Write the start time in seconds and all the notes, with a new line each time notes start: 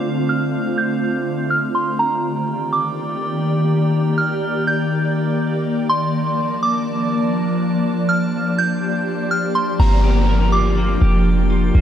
Already playing: D3 A3 C4 D4 F4 C5 F5
0.29 F6
0.78 G6
1.50 F6
1.75 C6
1.99 D#3 A#3 D#4 G4 D5 G5 A#5
2.73 D6
4.18 F6
4.67 G6
5.89 F3 D4 A#4 A5 C6
6.63 D6
7.85 G4 C5
8.09 F6
8.58 G6
9.31 F6
9.55 C6
9.79 G1 F3 A#3 D4 F4 G4 A#4 G5 A#5, downlifter
10.04 G4
10.29 A#4
10.52 F4 D6
10.77 A#3
11.01 F1 G4
11.50 F4
11.75 G1 A#3